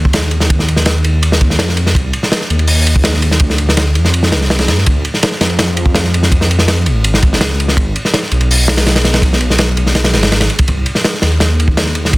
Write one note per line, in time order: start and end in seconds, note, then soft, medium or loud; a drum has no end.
0.00 1.03 D#2 loud
0.05 kick loud
0.13 snare loud
0.13 ride loud
0.22 snare soft
0.31 ride medium
0.40 snare soft
0.50 kick loud
0.50 ride medium
0.59 snare medium
0.68 ride medium
0.76 snare soft
0.86 snare loud
0.86 ride medium
1.04 1.58 D#2 loud
1.04 ride medium
1.23 ride medium
1.32 snare medium
1.41 kick loud
1.41 ride medium
1.50 snare soft
1.59 1.94 F2 medium
1.59 snare loud
1.59 ride medium
1.69 snare soft
1.77 ride medium
1.86 snare soft
1.95 2.12 C2 loud
1.95 kick loud
1.95 ride medium
2.13 ride medium
2.23 snare soft
2.32 snare loud
2.32 ride loud
2.41 snare soft
2.50 3.40 D#2 medium
2.50 ride medium
2.59 ride soft
2.67 open hi-hat medium
2.87 ride medium
2.96 kick loud
3.04 snare loud
3.04 ride loud
3.14 snare soft
3.22 ride medium
3.31 snare soft
3.40 3.97 D2 loud
3.40 kick loud
3.40 ride medium
3.50 snare soft
3.58 ride medium
3.69 snare medium
3.77 snare loud
3.77 ride medium
3.95 4.33 F2 loud
3.95 ride medium
4.05 snare soft
4.14 ride medium
4.23 snare medium
4.32 4.69 C2 medium
4.32 snare loud
4.32 ride medium
4.41 snare soft
4.50 snare loud
4.50 ride medium
4.59 snare loud
4.59 ride medium
4.68 4.84 G2 loud
4.68 snare loud
4.68 ride medium
4.78 snare soft
4.86 5.03 D2 loud
4.86 kick loud
4.86 ride medium
5.05 ride medium
5.14 snare soft
5.23 snare loud
5.23 ride medium
5.32 snare soft
5.41 6.88 F2 loud
5.41 snare loud
5.41 ride medium
5.50 ride soft
5.59 snare loud
5.59 ride medium
5.77 ride medium
5.86 kick loud
5.95 snare loud
5.95 ride medium
6.05 snare soft
6.14 ride medium
6.23 snare soft
6.32 kick loud
6.32 ride medium
6.41 snare medium
6.51 ride medium
6.59 snare medium
6.68 snare loud
6.68 ride medium
6.86 7.40 G#1 loud
6.86 ride medium
7.04 ride medium
7.14 snare medium
7.22 kick medium
7.22 ride medium
7.33 snare medium
7.41 7.76 C#2 medium
7.41 snare loud
7.41 ride medium
7.50 snare soft
7.60 ride medium
7.68 snare soft
7.77 7.93 G#1 loud
7.77 kick loud
7.77 ride loud
7.96 ride medium
8.05 snare soft
8.14 snare loud
8.14 ride medium
8.23 snare soft
8.31 9.76 B1 loud
8.31 ride medium
8.41 ride soft
8.51 open hi-hat medium
8.68 snare loud
8.68 ride medium
8.77 snare loud
8.77 ride medium
8.86 snare loud
8.86 ride medium
8.96 snare loud
8.96 ride medium
9.04 snare loud
9.04 ride medium
9.14 snare loud
9.14 ride medium
9.22 kick loud
9.22 ride loud
9.33 snare medium
9.41 ride medium
9.50 snare medium
9.58 snare loud
9.58 ride medium
9.77 10.15 B1 loud
9.77 ride medium
9.86 snare soft
9.95 snare loud
9.95 ride medium
10.04 snare loud
10.04 ride medium
10.13 10.24 F#1 loud
10.13 snare medium
10.13 ride medium
10.23 10.49 G#1 medium
10.23 snare loud
10.23 ride medium
10.32 snare loud
10.32 ride medium
10.41 snare loud
10.41 ride medium
10.50 ride medium
10.59 kick loud
10.59 ride medium
10.68 10.85 C2 loud
10.68 kick loud
10.68 ride medium
10.86 ride medium
10.95 snare soft
11.04 snare loud
11.04 ride medium
11.13 snare soft
11.22 12.18 D#2 loud
11.22 snare loud
11.22 ride medium
11.32 ride soft
11.40 snare loud
11.40 ride medium
11.60 ride medium
11.68 kick loud
11.77 snare loud
11.77 ride medium
11.86 snare soft
11.95 ride medium
12.05 snare soft
12.13 kick loud
12.13 ride medium